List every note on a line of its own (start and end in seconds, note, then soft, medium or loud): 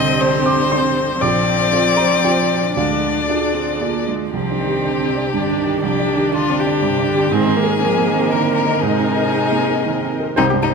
0.00 0.20 C2 medium
0.00 1.18 D3 medium
0.00 4.33 D3 medium
0.00 1.18 C4 medium
0.00 1.22 G4 medium
0.00 1.20 C5 soft
0.00 0.22 D#5 medium
0.00 0.42 D#6 medium
0.21 0.68 C4 soft
0.21 0.68 D4 soft
0.21 1.22 C5 medium
0.21 0.68 C5 soft
0.46 0.69 D6 medium
0.71 1.18 C4 soft
0.71 1.18 D4 soft
0.71 1.18 C5 soft
0.71 1.18 C6 medium
1.21 1.71 A#1 soft
1.21 2.73 F3 soft
1.21 2.73 C4 medium
1.21 2.76 F4 soft
1.21 2.72 C5 soft
1.21 2.76 D5 medium
1.21 1.93 D6 medium
1.72 2.20 C4 soft
1.72 2.20 F4 soft
1.72 2.20 C5 soft
1.97 2.21 A#5 medium
2.24 2.73 C4 soft
2.24 2.73 F4 soft
2.24 2.73 C5 soft
2.24 2.73 G5 medium
2.76 3.28 D2 soft
2.76 3.23 G#3 soft
2.76 4.10 D4 soft
2.76 4.33 G#4 soft
2.76 4.33 D5 soft
2.76 4.05 D5 soft
2.76 3.78 F5 soft
3.28 3.55 D4 soft
3.28 3.77 D4 soft
3.28 3.78 F4 soft
3.28 3.78 G#4 soft
3.54 3.83 C4 soft
3.81 4.09 A#3 soft
3.81 4.29 D4 soft
3.81 4.29 F4 soft
3.81 4.30 G#4 soft
4.08 4.33 G#3 soft
4.32 5.79 C2 soft
4.32 4.61 F3 soft
4.32 5.29 C4 soft
4.32 7.28 D4 soft
4.32 5.79 G4 soft
4.32 7.28 G4 soft
4.32 7.28 D5 soft
4.50 4.77 D4 soft
4.59 4.87 D#3 soft
4.67 4.94 G4 soft
4.84 5.11 D3 soft
4.84 5.10 D4 soft
5.00 5.17 C4 soft
5.09 5.35 C3 soft
5.17 5.44 D4 soft
5.33 5.60 G2 soft
5.33 5.58 D3 soft
5.33 5.82 D4 soft
5.51 5.77 D4 soft
5.58 5.85 D#3 soft
5.67 5.94 G4 soft
5.83 7.28 C2 soft
5.83 6.09 F3 soft
5.83 7.29 D4 soft
5.83 6.32 G4 soft
6.00 6.27 D4 soft
6.08 6.35 D#3 soft
6.16 6.43 G4 soft
6.32 6.84 D3 soft
6.32 6.59 D4 soft
6.32 6.61 F4 medium
6.50 6.66 C4 soft
6.60 7.34 G4 soft
6.67 6.93 D4 soft
6.82 7.09 G2 soft
6.82 7.09 C3 medium
6.98 7.25 D4 soft
7.07 7.32 D3 medium
7.15 7.32 G4 soft
7.31 8.78 G#2 medium
7.31 7.84 D#3 soft
7.31 7.58 C4 medium
7.31 10.37 C4 medium
7.31 8.32 G#4 medium
7.31 10.38 A#4 medium
7.31 10.37 D#5 medium
7.47 7.74 C4 soft
7.56 7.80 A#3 medium
7.63 7.91 A#4 soft
7.80 8.09 F3 soft
7.80 8.84 A#3 medium
7.80 8.08 C4 soft
7.98 8.15 A#3 soft
8.07 8.34 D#3 medium
8.14 8.41 C4 soft
8.31 8.85 D3 soft
8.31 8.58 D#3 soft
8.31 8.54 A#4 soft
8.48 8.75 C4 soft
8.54 8.81 A#4 soft
8.65 8.93 A#4 soft
8.80 10.34 G#2 soft
8.80 10.18 C3 soft
8.80 10.17 D#4 soft
8.80 10.16 G#4 soft
9.00 9.28 C4 soft
9.17 9.45 A#4 soft
9.34 9.62 C4 soft
9.52 9.69 A#3 soft
9.69 9.97 C4 soft
9.86 10.14 D#3 soft
10.04 10.31 C4 soft
10.20 10.38 A#4 soft
10.36 10.74 C2 medium
10.36 10.46 G3 medium
10.36 10.45 C4 medium
10.36 10.74 C4 medium
10.36 10.45 D#4 medium
10.36 10.74 G4 medium
10.36 10.74 C5 medium
10.50 10.74 G2 soft
10.50 10.58 G4 medium
10.63 10.71 G3 medium
10.63 10.71 D#4 soft
10.70 10.74 C4 soft